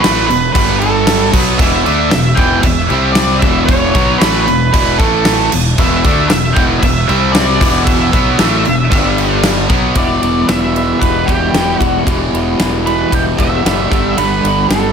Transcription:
0.00 distorted electric guitar A2 E3 A3, lead electric guitar B4, snare, crash
0.05 fingered electric bass A1
0.27 distorted electric guitar E2 B2, lead electric guitar B4, crash
0.31 fingered electric bass E1
0.53 fingered electric bass G1, distorted electric guitar G2 D3 G3, lead electric guitar B4, kick, crash
0.80 lead electric guitar A4, crash
1.07 snare, crash
1.33 fingered electric bass B1, distorted electric guitar B2 F#3 B3, kick, crash
1.58 fingered electric bass E1, distorted electric guitar E2 B2 E3, lead electric guitar E5, kick, crash
1.85 fingered electric bass D2, distorted electric guitar D3 A3 D4, crash
2.11 fingered electric bass E1, distorted electric guitar E2 B2, lead electric guitar E5, snare, crash
2.35 fingered electric bass E1, distorted electric guitar E2, lead electric guitar G5, kick, crash
2.39 distorted electric guitar B2 E3
2.62 fingered electric bass E1, lead electric guitar E5, kick, crash
2.66 distorted electric guitar E2 B2
2.90 fingered electric bass C2, distorted electric guitar C3 G3 C4, crash
3.13 lead electric guitar D5, snare, crash
3.39 fingered electric bass E1, lead electric guitar E5, kick, crash
3.46 distorted electric guitar E2 B2 E3
3.65 lead electric guitar C#5, kick, crash
3.94 fingered electric bass B1, distorted electric guitar B2 F#3 B3, kick, crash
4.18 fingered electric bass A1, lead electric guitar B4, snare, crash
4.22 distorted electric guitar A2 E3 A3
4.46 fingered electric bass E1, distorted electric guitar E2, lead electric guitar B4, crash
4.50 distorted electric guitar B2
4.73 fingered electric bass E1, distorted electric guitar E2 B2 E3, lead electric guitar B4, kick, crash
4.99 fingered electric bass A1, distorted electric guitar A2 E3 A3, lead electric guitar A4, kick, crash
5.25 snare, crash
5.52 fingered electric bass E1, distorted electric guitar E2 B2, crash
5.78 fingered electric bass E1, distorted electric guitar E2 B2 E3, lead electric guitar E5, kick, crash
6.04 fingered electric bass D2, distorted electric guitar D3 A3 D4, kick, crash
6.29 fingered electric bass E1, distorted electric guitar E2 B2, lead electric guitar E5, snare, crash
6.53 fingered electric bass E1, distorted electric guitar E2 B2 E3, lead electric guitar G5, kick, crash
6.80 fingered electric bass E1, distorted electric guitar E2 B2, lead electric guitar E5, kick, crash
7.08 fingered electric bass C2, distorted electric guitar C3 G3 C4, crash
7.32 lead electric guitar D5, snare, crash
7.61 fingered electric bass E1, distorted electric guitar E2 B2 E3, kick, crash
7.85 lead electric guitar E5, kick, crash
8.11 fingered electric bass B1, distorted electric guitar B2 F#3 B3, kick, crash
8.37 fingered electric bass A1, distorted electric guitar A2 E3 A3, snare, crash
8.65 fingered electric bass E1, distorted electric guitar E2 B2, crash
8.90 fingered electric bass G1, distorted electric guitar G2 D3 G3, kick, crash
9.18 crash
9.44 snare, crash
9.69 fingered electric bass B1, distorted electric guitar B2 F#3 B3, kick, crash
9.94 fingered electric bass E1, distorted electric guitar E2 B2 E3, clean electric guitar E2 B2 E3 G3 E4, lead electric guitar D5, kick, ride
9.98 clean electric guitar G4
10.22 fingered electric bass E1, clean electric guitar E3 G3 E4 G4, ride
10.46 fingered electric bass E1, clean electric guitar E3 G3 E4 G4, lead electric guitar E5, snare, ride
10.73 clean electric guitar E2 B2 E3 G3 E4 G4, ride
10.99 fingered electric bass E1, clean electric guitar E3 G3 E4 G4, lead electric guitar B4, kick, ride
11.25 fingered electric bass E1, clean electric guitar E2 B2 E3 G3 E4 G4, distorted electric guitar B2 E3, lead electric guitar G4, kick, ride
11.30 distorted electric guitar E2
11.52 fingered electric bass E1, distorted electric guitar E2, clean electric guitar E3 G3 E4 G4, snare, ride
11.56 distorted electric guitar B2 E3
11.77 fingered electric bass E1, clean electric guitar G3 E4 G4, lead electric guitar F#4, kick
11.82 clean electric guitar E3, ride
12.04 fingered electric bass E1, clean electric guitar E2 B2 E3 G3 E4 G4, distorted electric guitar E2 B2, kick, ride
12.09 distorted electric guitar E3
12.31 fingered electric bass E1, clean electric guitar E3 G3 E4 G4, ride
12.57 fingered electric bass E1, clean electric guitar E3 G3 E4 G4, snare, ride
12.83 clean electric guitar E2 B2 E3 G3 E4 G4, lead electric guitar B4
12.87 ride
13.10 fingered electric bass E1, clean electric guitar E3 G3 E4 G4, kick, ride
13.14 lead electric guitar G5
13.36 fingered electric bass E1, clean electric guitar E2 B2 E3 G3 E4 G4, distorted electric guitar E2 B2 E3, lead electric guitar E5, kick, ride
13.63 fingered electric bass F#1, distorted electric guitar E2 B2 E3, clean electric guitar E3 G3 E4 G4, snare, ride
13.89 fingered electric bass G1, distorted electric guitar G2 D3 G3, clean electric guitar D3 G3 B3 D4 G4, kick, ride
13.93 clean electric guitar G2
14.16 fingered electric bass G1, clean electric guitar G2 D3 G3 B3 D4 G4, lead electric guitar B4, ride
14.42 fingered electric bass G1, clean electric guitar G3 B3 D4 G4, ride
14.68 fingered electric bass G1, clean electric guitar G3 B3 D4 G4, lead electric guitar A4, snare, ride

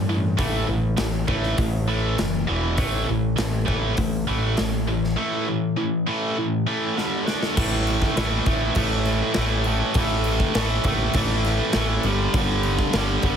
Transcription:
Already playing: fingered electric bass G2
0.09 distorted electric guitar A2 E3
0.37 fingered electric bass A1, distorted electric guitar A2 E3 A3, kick, open hi-hat
0.68 fingered electric bass A1, distorted electric guitar A2 E3
0.97 fingered electric bass A1, distorted electric guitar A2 E3, snare, open hi-hat
1.28 fingered electric bass A1, distorted electric guitar A2 E3 A3, kick
1.43 snare
1.58 fingered electric bass A1, distorted electric guitar A2 E3, kick, open hi-hat
1.88 distorted electric guitar A2 E3 A3
2.17 fingered electric bass F#1, distorted electric guitar A2 E3, snare, open hi-hat
2.47 fingered electric bass E1, distorted electric guitar E2 B2 E3
2.77 fingered electric bass A1, distorted electric guitar A2 E3 A3, kick, open hi-hat
3.08 fingered electric bass A1, distorted electric guitar A2 E3
3.37 fingered electric bass A1, distorted electric guitar A2 E3, snare, open hi-hat
3.66 fingered electric bass A1, distorted electric guitar A2 E3 A3, kick
3.97 fingered electric bass A1, distorted electric guitar A2 E3, kick, open hi-hat
4.27 fingered electric bass A1, distorted electric guitar A2 E3 A3
4.57 fingered electric bass A1, distorted electric guitar A2 E3, snare, open hi-hat
4.88 distorted electric guitar A2 E3
5.04 snare
5.16 distorted electric guitar A2 E3 A3
5.47 distorted electric guitar A2 E3
5.76 distorted electric guitar A2 E3
6.07 distorted electric guitar A2 E3 A3
6.38 distorted electric guitar A2 E3
6.67 distorted electric guitar A2 E3 A3
6.96 distorted electric guitar G2 D3 G3, snare
7.25 distorted electric guitar D3 A3 D4, snare
7.43 snare
7.56 fingered electric bass A1, distorted electric guitar A2 E3 A3, kick, crash
7.87 crash
8.02 kick, snare
8.16 fingered electric bass A1, distorted electric guitar A2 E3 A3, snare, crash
8.46 fingered electric bass A1, distorted electric guitar A2 E3 A3, kick, crash
8.75 fingered electric bass A1, distorted electric guitar A2 E3 A3, kick, crash
9.05 snare, crash
9.34 fingered electric bass A1, distorted electric guitar A2 E3, snare, crash
9.38 distorted electric guitar A3
9.64 distorted electric guitar A2 E3 A3, crash
9.94 fingered electric bass A1, distorted electric guitar A2 E3 A3, kick, crash
10.24 crash
10.39 kick, snare
10.55 fingered electric bass A1, distorted electric guitar A2 E3 A3, snare, crash
10.84 fingered electric bass A1, distorted electric guitar A2 A3, kick, crash
10.88 distorted electric guitar E3
11.13 fingered electric bass A1, distorted electric guitar A2 E3 A3, kick, crash
11.44 snare, crash
11.73 fingered electric bass A1, distorted electric guitar A2 E3, snare, crash
11.77 distorted electric guitar A3
12.03 fingered electric bass G1, distorted electric guitar G2 D3 G3, crash
12.34 fingered electric bass G1, distorted electric guitar G2 D3, kick, crash
12.38 distorted electric guitar G3
12.63 crash
12.78 kick, snare
12.93 fingered electric bass G1, distorted electric guitar G2 D3, snare, crash
12.97 distorted electric guitar G3
13.22 fingered electric bass G1, distorted electric guitar G2 D3 G3, kick, crash

